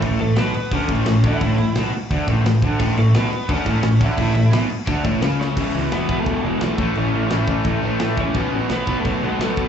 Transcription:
<<
  \new Staff \with { instrumentName = "Lead electric guitar" } { \time 4/4 \key a \major \tempo 4 = 173 r8 <a a'>8 <b b'>4 <cis' cis''>4. <e' e''>8~ | <e' e''>4 r2. | r8 <a a'>8 <b b'>4 <cis' cis''>4. <e' e''>8~ | <e' e''>4 r2 r8 <cis' cis''>8~ |
<cis' cis''>8 r8 <b b'>8. <a a'>8. <gis gis'>8 <a a'>4 | <cis' cis''>2 r4. <cis' cis''>8~ | <cis' cis''>8 r8 <b b'>8. <a a'>8. <gis gis'>8 <a a'>4 | }
  \new Staff \with { instrumentName = "Distorted electric guitar" } { \clef bass \time 4/4 \key a \major a,8 a,8 b,8 r8 d8 a,8 a,8 d8 | a,8 a,8 b,8 r8 d8 a,8 a,8 d8 | a,8 a,8 b,8 r8 d8 a,8 a,8 d8 | a,8 a,8 b,8 r8 d8 a,8 cis4 |
<e, b, e>8 <e, b, e>8 <e, b, e>8 <e, b, e>8 <e, b, e>8 <e, b, e>8 <e, b, e>8 <a, e a>8 | <a, e a>8 <a, e a>8 <a, e a>8 <a, e a>8 <a, e a>8 <a, e a>8 <a, e a>8 <a, e a>8 | <b, fis b>8 <b, fis b>8 <b, fis b>8 <b, fis b>8 <b, fis b>8 <b, fis b>8 <b, fis b>8 <b, fis b>8 | }
  \new Staff \with { instrumentName = "Overdriven electric guitar" } { \clef bass \time 4/4 \key a \major a,8 a,8 b,8 r8 d8 a,8 a,8 d8 | a,8 a,8 b,8 r8 d8 a,8 a,8 d8 | a,8 a,8 b,8 r8 d8 a,8 a,8 d8 | a,8 a,8 b,8 r8 d8 a,8 cis4 |
<e, b, e>8 <e, b, e>8 <e, b, e>8 <e, b, e>8 <e, b, e>8 <e, b, e>8 <e, b, e>8 <a, e a>8 | <a, e a>8 <a, e a>8 <a, e a>8 <a, e a>8 <a, e a>8 <a, e a>8 <a, e a>8 <a, e a>8 | <b, fis b>8 <b, fis b>8 <b, fis b>8 <b, fis b>8 <b, fis b>8 <b, fis b>8 <b, fis b>8 <b, fis b>8 | }
  \new Staff \with { instrumentName = "Overdriven electric guitar" } { \clef bass \time 4/4 \key a \major r1 | r1 | a,8 a,8 b,8 r8 d8 a,8 a,8 d8 | a,8 a,8 b,8 r8 d8 a,8 cis4 |
<e, b, e>4. <e, b, e>4. <e, b, e>8 <a, e a>8~ | <a, e a>4 <a, e a>4. <a, e a>4 r8 | <b, fis b>4. <b, fis b>4. <b, fis b>4 | }
  \new Staff \with { instrumentName = "Picked electric bass" } { \clef bass \time 4/4 \key a \major a,,8 a,,8 b,,8 r8 d,8 a,,8 a,,8 d,8 | a,,8 a,,8 b,,8 r8 d,8 a,,8 a,,8 d,8 | a,,8 a,,8 b,,8 r8 d,8 a,,8 a,,8 d,8 | a,,8 a,,8 b,,8 r8 d,8 a,,8 cis,4 |
e,,8 cis,8 e,,8 e,,8 e,,8 e,,8 b,,8 a,,8 | a,,8 a,,8 a,,8 a,,8 a,,8 a,,8 a,8 e,,8 | b,,8 a,,8 b,,8 b,,8 b,,8 b,,8 b,,8 b,,8 | }
  \new DrumStaff \with { instrumentName = "Drums" } \drummode { \time 4/4 <cymc bd>8 cymc8 <cymc sn>8 cymc8 <cymc bd>8 <cymc bd>8 <cymc sn>8 <cymc bd>8 | <cymc bd>8 cymc8 <cymc sn>8 cymc8 <cymc bd>8 <cymc bd>8 <cymc sn>8 <cymc bd>8 | <cymc bd>8 cymc8 <cymc sn>8 cymc8 <cymc bd>8 <cymc bd>8 <cymc sn>8 <cymc bd>8 | <cymc bd>8 cymc8 <cymc sn>8 cymc8 <cymc bd>8 <cymc bd>8 <cymc sn>8 sn8 |
<cymc bd>4 <cymc sn>8 bd8 <cymc bd>4 <cymc sn>8 bd8 | cymc4 <cymc sn>8 bd8 <cymc bd>4 <cymc sn>8 bd8 | <cymc bd>4 <cymc sn>8 bd8 <cymc bd>4 <cymc sn>8 bd8 | }
>>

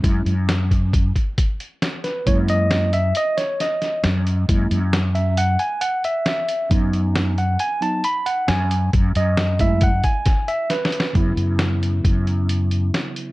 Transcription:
<<
  \new Staff \with { instrumentName = "Tine electric piano" } { \time 5/4 \key cis \minor \tempo 4 = 135 r1 r8 b'8 | cis''8 dis''4 e''8 dis''8 cis''8 dis''4 r4 | r4. e''8 fis''8 gis''8 fis''8 e''8 e''4 | r4. fis''8 gis''8 a''8 b''8 fis''8 gis''4 |
r8 dis''4 e''8 fis''8 gis''4 e''8 b'4 | <cis fis b e'>1~ <cis fis b e'>4 | }
  \new Staff \with { instrumentName = "Tine electric piano" } { \time 5/4 \key cis \minor <gis cis' e'>8 r1 r8 | <gis ais e'>4. r2. r8 | <gis ais e'>8 r1 r8 | <fis b dis'>4. r4 <fis b dis'>8 r2 |
r4. <gis a e'>8 r2. | r1 r4 | }
  \new Staff \with { instrumentName = "Fretless electric bass" } { \clef bass \time 5/4 \key cis \minor fis,8 fis,2 r2 r8 | fis,2 r2 fis,4 | fis,8 fis,2 r2 r8 | fis,2 r2 fis,4 |
fis,8 fis,2 r2 r8 | fis,8 fis,4. fis,2 r4 | }
  \new DrumStaff \with { instrumentName = "Drums" } \drummode { \time 5/4 <hh bd>8 hh8 <hh sn>8 <hh bd>8 <hh bd>8 <hh bd>8 <hh bd>8 hh8 <hh sn>8 <hh sn>8 | <hh bd>8 hh8 <hh sn>8 hh8 hh8 <hh sn>8 <hh sn>8 <hh sn>8 <hh sn>8 hh8 | <hh bd>8 hh8 <hh sn>8 hh8 hh8 hh8 hh8 hh8 <hh sn>8 hh8 | <hh bd>8 hh8 <hh sn>8 hh8 hh8 hh8 hh8 hh8 <hh sn>8 hh8 |
<hh bd>8 hh8 <hh sn>8 <hh bd>8 <hh bd>8 <hh bd>8 <hh bd sn>8 hh8 \tuplet 3/2 { <hh sn>16 r16 sn16 hh16 sn16 r16 } | <hh bd>8 hh8 <hh sn>8 hh8 <hh bd>8 hh8 hh8 hh8 <hh sn>8 hh8 | }
>>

